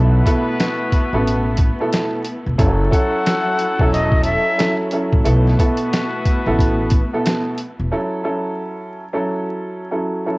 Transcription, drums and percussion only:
0.26 kick loud
0.26 closed hi-hat medium
0.60 snare loud
0.60 closed hi-hat loud
0.92 kick medium
0.92 closed hi-hat medium
1.27 closed hi-hat medium
1.57 kick loud
1.57 closed hi-hat medium
1.93 snare loud
1.93 closed hi-hat loud
2.25 closed hi-hat medium
2.59 kick loud
2.59 closed hi-hat medium
2.92 kick medium
2.92 closed hi-hat medium
3.26 snare loud
3.26 closed hi-hat loud
3.59 closed hi-hat medium
3.79 kick medium
3.94 closed hi-hat medium
4.12 kick loud
4.23 closed hi-hat medium
4.59 snare loud
4.59 closed hi-hat loud
4.91 closed hi-hat medium
5.13 kick medium
5.25 closed hi-hat medium
5.47 snare soft
5.59 kick medium
5.59 closed hi-hat medium
5.77 closed hi-hat medium
5.93 snare loud
5.93 closed hi-hat loud
6.25 kick medium
6.25 closed hi-hat medium
6.59 kick medium
6.59 closed hi-hat medium
6.90 kick loud
6.90 closed hi-hat medium
7.26 snare loud
7.26 closed hi-hat loud
7.58 closed hi-hat medium

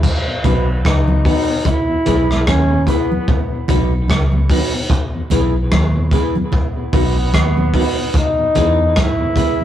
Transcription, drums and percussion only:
0.03 kick loud
0.03 crash loud
0.03 low conga medium
0.44 kick medium
0.44 closed hi-hat medium
0.44 low conga medium
0.84 kick loud
0.84 cross-stick loud
0.84 high conga medium
1.08 high conga medium
1.25 kick loud
1.25 open hi-hat medium
1.65 kick loud
1.65 hi-hat pedal medium
1.65 low conga medium
2.06 kick medium
2.06 closed hi-hat medium
2.06 low conga medium
2.31 cross-stick medium
2.47 kick loud
2.47 cross-stick loud
2.47 high conga medium
2.87 kick medium
2.87 closed hi-hat medium
2.87 low conga medium
3.11 high conga soft
3.28 kick loud
3.28 low conga medium
3.68 kick loud
3.68 closed hi-hat medium
3.68 low conga medium
4.08 kick loud
4.08 cross-stick loud
4.08 high conga medium
4.32 high conga soft
4.50 kick medium
4.50 open hi-hat medium
4.90 kick loud
4.90 hi-hat pedal medium
4.90 low conga medium
5.30 kick medium
5.30 closed hi-hat medium
5.30 low conga medium
5.71 kick loud
5.71 cross-stick loud
5.71 high conga medium
6.11 kick loud
6.11 closed hi-hat medium
6.11 low conga medium
6.35 high conga soft
6.52 kick loud
6.52 low conga medium
6.93 kick loud
6.93 open hi-hat medium
6.93 low conga medium
7.33 kick loud
7.33 cross-stick loud
7.33 hi-hat pedal medium
7.33 high conga medium
7.57 high conga soft
7.74 kick medium
7.74 open hi-hat medium
8.14 kick loud
8.14 hi-hat pedal medium
8.14 low conga medium
8.55 kick medium
8.55 closed hi-hat medium
8.55 low conga medium
8.96 kick loud
8.96 cross-stick loud
8.96 high conga medium
9.36 kick medium
9.36 closed hi-hat medium
9.36 low conga medium
9.61 high conga soft

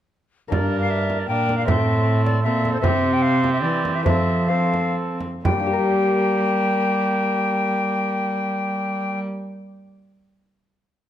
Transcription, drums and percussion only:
0.52 frame drum medium
1.10 frame drum soft
1.49 frame drum soft
1.68 frame drum medium
2.27 frame drum soft
2.65 frame drum soft
2.84 frame drum medium
3.44 frame drum soft
3.85 frame drum soft
4.06 frame drum medium
4.74 frame drum soft
5.21 frame drum soft
5.45 frame drum medium

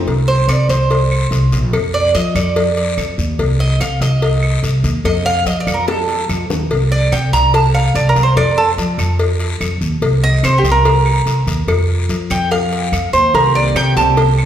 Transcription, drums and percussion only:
0.08 cowbell medium
0.08 long guiro medium
0.49 cowbell medium
0.49 short guiro medium
0.49 claves medium
0.70 cowbell medium
0.70 short guiro medium
0.90 cowbell loud
0.90 long guiro medium
1.12 claves medium
1.32 cowbell medium
1.32 short guiro medium
1.52 cowbell medium
1.52 short guiro medium
1.73 cowbell loud
1.73 long guiro medium
1.73 claves medium
2.15 cowbell medium
2.15 short guiro medium
2.36 cowbell medium
2.36 short guiro medium
2.36 claves medium
2.56 cowbell loud
2.56 long guiro medium
2.77 cowbell medium
2.98 cowbell medium
2.98 short guiro medium
2.98 claves medium
3.19 short guiro medium
3.39 cowbell loud
3.39 long guiro medium
3.80 cowbell medium
3.80 short guiro medium
3.80 claves medium
4.02 cowbell medium
4.02 short guiro medium
4.22 cowbell loud
4.22 long guiro medium
4.43 claves medium
4.64 cowbell medium
4.64 short guiro medium
4.84 cowbell medium
4.84 short guiro medium
5.05 cowbell loud
5.05 long guiro medium
5.05 claves medium
5.46 cowbell medium
5.46 short guiro medium
5.67 cowbell medium
5.67 short guiro medium
5.67 claves medium
5.88 cowbell loud
5.88 high bongo loud
5.88 long guiro medium
6.09 cowbell medium
6.29 cowbell medium
6.29 short guiro medium
6.29 claves medium
6.50 low bongo medium
6.50 short guiro medium
6.71 cowbell loud
6.71 long guiro medium
7.12 cowbell medium
7.12 short guiro medium
7.12 claves medium
7.33 cowbell medium
7.33 short guiro medium
7.54 cowbell loud
7.54 long guiro medium
7.75 claves medium
7.95 cowbell medium
7.95 short guiro medium
8.16 cowbell medium
8.16 short guiro medium
8.37 cowbell loud
8.37 long guiro medium
8.37 claves medium
8.78 cowbell medium
8.78 short guiro medium
8.99 cowbell medium
8.99 short guiro medium
8.99 claves medium
9.19 cowbell loud
9.19 long guiro medium
9.40 cowbell medium
9.61 cowbell medium
9.61 short guiro medium
9.61 claves medium
9.82 short guiro medium
10.02 cowbell loud
10.02 long guiro medium
10.44 cowbell medium
10.44 short guiro medium
10.44 claves medium
10.65 cowbell medium
10.65 short guiro medium
10.85 cowbell loud
10.85 long guiro medium
11.06 claves medium
11.27 cowbell medium
11.27 short guiro medium
11.47 cowbell medium
11.47 short guiro medium
11.68 cowbell loud
11.68 long guiro medium
11.68 claves medium
12.09 cowbell medium
12.09 short guiro medium
12.30 cowbell medium
12.30 short guiro medium
12.30 claves medium
12.51 cowbell loud
12.51 long guiro medium
12.73 cowbell medium
12.93 cowbell medium
12.93 short guiro medium
12.93 claves medium
13.13 short guiro medium
13.34 cowbell loud
13.34 long guiro medium
13.76 cowbell medium
13.76 short guiro medium
13.76 claves medium
13.97 cowbell medium
13.97 short guiro medium
14.17 cowbell loud
14.17 long guiro medium
14.38 claves medium

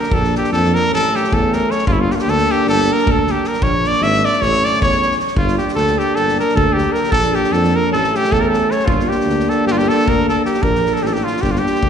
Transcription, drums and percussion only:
0.03 snare soft
0.11 kick medium
0.24 snare soft
0.35 snare soft
0.44 snare soft
0.53 snare soft
0.64 snare soft
0.75 snare soft
0.93 snare soft
1.04 snare soft
1.15 snare soft
1.24 snare soft
1.32 kick medium
1.53 snare soft
1.71 snare soft
1.78 snare soft
1.87 kick medium
2.10 snare soft
2.19 snare soft
2.28 snare soft
2.38 snare soft
2.49 snare soft
2.67 snare soft
2.78 snare soft
2.98 snare soft
3.07 kick medium
3.27 snare soft
3.44 snare soft
3.53 snare soft
3.62 kick medium
3.84 snare soft
3.93 snare soft
4.02 snare soft
4.13 snare soft
4.25 snare soft
4.33 snare soft
4.42 kick medium
4.42 snare soft
4.53 snare soft
4.65 snare soft
4.73 snare soft
4.82 kick medium
4.91 snare soft
5.02 snare soft
5.11 snare soft
5.19 snare soft
5.27 snare soft
5.37 kick medium
5.48 snare soft
5.58 snare soft
5.68 snare soft
5.77 snare soft
5.87 snare soft
5.99 snare soft
6.16 snare soft
6.28 snare soft
6.39 snare soft
6.49 snare soft
6.57 kick medium
6.78 snare soft
6.94 snare soft
7.04 snare soft
7.12 kick medium
7.22 snare soft
7.34 snare soft
7.44 snare soft
7.53 snare soft
7.64 snare soft
7.93 snare soft
8.03 snare soft
8.14 snare soft
8.24 snare soft
8.32 kick medium
8.53 snare soft
8.71 snare soft
8.79 snare soft
8.88 kick medium
8.99 snare soft
9.11 snare soft
9.20 snare soft
9.29 snare soft
9.39 snare soft
9.50 snare soft
9.67 snare soft
9.79 snare soft
9.89 snare soft
9.99 snare soft
10.08 kick medium
10.29 snare soft
10.45 snare soft
10.54 snare soft
10.63 kick medium
10.75 snare soft
10.86 snare soft
10.96 snare soft
11.05 snare soft
11.15 snare soft
11.27 snare soft
11.37 snare soft
11.43 kick medium
11.43 snare soft
11.55 snare soft
11.66 snare soft
11.75 snare soft
11.83 kick medium

